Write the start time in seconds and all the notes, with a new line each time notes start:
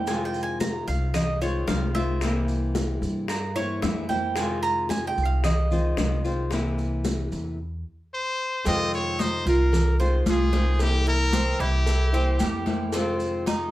Already playing: F2
0.07 C3 D#3 G#3 C4 F4 G#5, high bongo, high conga, maracas
0.25 G5
0.34 high conga, maracas
0.43 G#5
0.60 A#5, high bongo, high conga, maracas
0.88 C2 F5, high conga, maracas
1.14 D#5, muted nylon-string guitar stroke, high bongo, high conga, low conga, maracas
1.41 D#3 G#3 C4 F4 C#5, high conga, maracas
1.67 C2 D#3 G#3 C4 F4 F5, high bongo, low bongo, high conga, maracas
1.95 D#3 G#3 C4 F4 E5, high conga, maracas
2.21 C3 E3 A#3 C4 E4, high bongo, high conga, maracas
2.48 high bongo, high conga, maracas
2.75 high bongo, high conga, maracas
3.02 G2, high bongo, high conga, maracas
3.28 A#4, muted nylon-string guitar stroke, high bongo, high conga, maracas
3.55 E3 A#3 C4 E4 C#5, high bongo, high conga, maracas
3.82 F2 E3 A#3 C4 E4 E5, high bongo, low bongo, high conga, maracas
4.09 E3 A#3 C4 E4 G5, high conga, maracas
4.35 C3 D#3 G#3 C4 F4 G#5, high bongo, high conga, maracas
4.63 A#5, high conga, maracas
4.89 G#5, high bongo, high conga, maracas
5.07 G5
5.17 C2, high conga, maracas
5.25 F5
5.44 D#5, muted nylon-string guitar stroke, high bongo, high conga, low conga, maracas
5.71 D#3 G#3 C4 F4, high conga, low conga, maracas
5.97 C2 D#3 G#3 C4 F4, high bongo, low bongo, high conga, maracas
6.24 D#3 G#3 C4 F4, maracas
6.50 C3 E3 A#3 C4 E4, high bongo, high conga, maracas
6.78 high bongo, high conga, maracas
7.05 high bongo, high conga, maracas
7.32 E2, high bongo, high conga, maracas
8.14 C5
8.64 F2 C3 D#3 G#3 C4 F4 D#5, cowbell, high conga, maracas
8.93 C#5, high conga, maracas
9.19 D#4 C5, cowbell, high conga, maracas
9.46 C2 F4 A#4, high conga, maracas
9.73 muted nylon-string guitar stroke, cowbell, high conga, low conga, maracas
10.00 D#3 G#3 C4 F4 C5, maracas
10.26 C2 D#3 G#3 C4 F4 G#4, cowbell, high conga, maracas
10.52 D#3 G#3 C4 F4 C5, cowbell, high conga, maracas
10.79 C3 E3 A#3 C4 E4 G4, cowbell, maracas
11.06 E4 A#4, high conga, maracas
11.33 C4, cowbell, high conga, maracas
11.60 C2 E4 G4, cowbell, high conga, maracas
11.86 muted nylon-string guitar stroke, cowbell, high conga, maracas
12.13 E3 A#3 C4 E4, high conga, maracas
12.39 F2 E3 A#3 C4 E4 G4, cowbell, high conga, maracas
12.66 E3 A#3 C4 E4, cowbell, high conga, maracas
12.93 C3 D#3 G#3 C4 F4, cowbell, high conga, maracas
13.20 high conga, maracas
13.46 D#4, cowbell, high conga, maracas